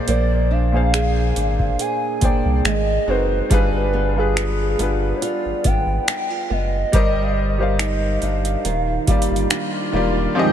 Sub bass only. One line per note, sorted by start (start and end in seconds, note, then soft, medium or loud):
0.08 1.32 A#1 loud
1.36 1.70 G#1 medium
2.22 2.31 C2 soft
2.45 2.61 C2 medium
2.64 2.98 G#1 loud
3.07 3.41 F#1 medium
3.51 4.75 G1 loud
4.79 5.13 G1 medium
5.45 5.53 G#1 soft
5.65 5.99 G#1 medium
6.50 6.84 F#1 loud
6.93 8.18 G1 loud
8.22 8.56 G1 medium
8.65 8.99 D#1 loud
9.08 9.17 G1 soft
9.31 9.46 G1 medium
9.93 10.27 E1 medium